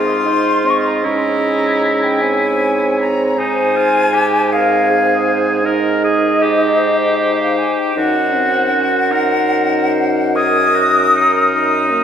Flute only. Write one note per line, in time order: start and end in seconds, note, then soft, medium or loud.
0.00 0.71 C6 loud
0.70 0.80 C#6 medium
0.78 0.88 C6 medium
0.87 0.99 A#5 medium
0.97 1.06 C6 medium
1.04 2.05 A#5 loud
2.03 2.23 G5 medium
2.21 2.99 G#5 loud
3.00 3.40 A#5 loud
3.39 4.54 G#5 loud
4.52 5.38 F5 loud
5.66 7.41 D#5 loud
7.40 7.59 F5 loud
7.58 7.80 G#5 medium
7.79 7.97 G5 loud
7.97 10.37 F#5 loud
10.35 11.52 D#6 loud
11.53 12.04 D#6 loud